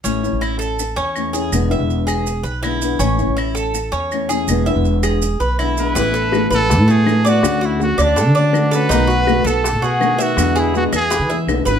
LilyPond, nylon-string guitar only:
\new Staff \with { instrumentName = "Nylon-string guitar" } { \time 4/4 \key a \major \tempo 4 = 163 <e a cis' e'>8 <a cis' e'>4. r4 <e a cis' e'>8 <a cis' e'>8 | <b, d gis b e'>8 <d gis b e'>4. r4 <d gis b e'>8 <d gis b e'>8 | <e a cis' e'>8 <a cis' e'>4. r4 <e a cis' e'>8 <a cis' e'>8 | <b, d gis b e'>8 <d gis b e'>4. r4 <d gis b e'>8 <d gis b e'>8 |
<e a b e'>4 <e a b e'>8 <a b e'>8 r8 <a b e'>8 <e a b e'>8 <a b e'>8 | <d a cis' fis'>4 <d a cis' fis'>8 <a cis' fis'>8 r8 <a cis' fis'>8 <d a cis' fis'>8 <a cis' fis'>8 | <b, dis a b fis'>4 <b, dis a b fis'>8 <a b fis'>8 r8 <a b fis'>8 <dis a b fis'>8 <dis a b fis'>8 | <b, d gis b e'>4 <b, d gis b e'>8 <gis b e'>8 r8 <gis b e'>8 <d gis b e'>8 <d gis b e'>8 | }